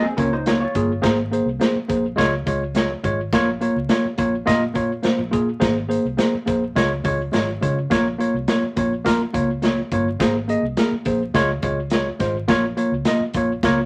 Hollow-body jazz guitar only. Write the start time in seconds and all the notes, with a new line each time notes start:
0.02 C4 G#4
0.17 C#4 A#4
0.33 D#4 C5
0.60 F4 C#5